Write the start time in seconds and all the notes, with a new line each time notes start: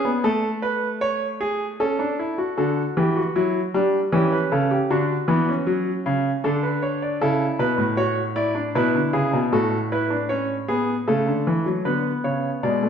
0.05 B3
0.24 A3 A4
0.62 B4
1.01 C#5
1.41 G#4
1.80 C#4 A4
1.99 D4
2.19 E4
2.38 F#4
2.58 D3 F#4 A4
2.97 E3 G4
3.16 F#4
3.36 F#3 E4
3.74 G3 D4
4.12 E3 C#4 G4
4.32 B4
4.52 C#3 A4
4.71 G4
4.90 D3 D4 F#4
5.28 E3 B3
5.49 C#4
5.67 F#3
6.06 C#3
6.44 D3 D4 A4
6.63 B4
6.82 C#5
7.02 D5
7.21 C#3 E4 A4
7.59 B2 B4
7.78 A2
7.97 F#4 C#5
8.36 E4 D5
8.55 D4
8.75 B2 E4 B4
8.95 D3
9.13 C#3 G#4
9.33 B2
9.52 A2 F#4 A4
9.92 E4 B4
10.10 D4
10.29 C#4 C#5
10.68 B3 G#4
11.08 C#3 A3 A4
11.27 D3
11.47 E3
11.66 F#3
11.85 D3 B3 B4
12.24 C#3 C#5
12.63 B2 G#3 D5
12.83 A3